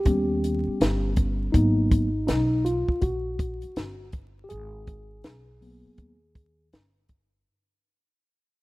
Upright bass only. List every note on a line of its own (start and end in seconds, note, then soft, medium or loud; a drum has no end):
0.06 0.64 D#2 loud
0.67 muted upright bass stroke soft
0.81 1.51 G1 medium
1.55 2.25 G#1 loud
2.29 2.86 B1 medium
2.89 muted upright bass stroke soft
3.02 3.60 A#1 medium
3.64 muted upright bass stroke soft
3.77 4.47 G1 medium
4.51 5.21 G#1 medium
5.25 5.82 B1 medium
5.86 muted upright bass stroke soft
5.98 6.69 D#2 medium
6.73 7.43 G1 medium